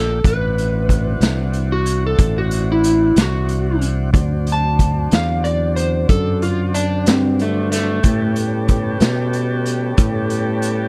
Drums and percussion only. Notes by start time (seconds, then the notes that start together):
0.24 kick, closed hi-hat
0.58 closed hi-hat
0.89 kick, closed hi-hat
1.21 snare, closed hi-hat
1.53 closed hi-hat
1.86 closed hi-hat
2.18 kick, closed hi-hat
2.51 closed hi-hat
2.84 closed hi-hat
3.16 snare, closed hi-hat
3.49 closed hi-hat
3.81 closed hi-hat
4.14 kick, closed hi-hat
4.47 closed hi-hat
4.79 kick, closed hi-hat
5.11 snare, closed hi-hat
5.45 closed hi-hat
5.77 closed hi-hat
6.09 kick, closed hi-hat
6.42 closed hi-hat
6.74 closed hi-hat
7.06 snare, closed hi-hat
7.39 closed hi-hat
7.72 snare, closed hi-hat
8.03 kick, closed hi-hat
8.36 closed hi-hat
8.68 kick, closed hi-hat
9.00 snare, closed hi-hat
9.33 closed hi-hat
9.66 closed hi-hat
9.97 kick, closed hi-hat
10.30 closed hi-hat
10.62 closed hi-hat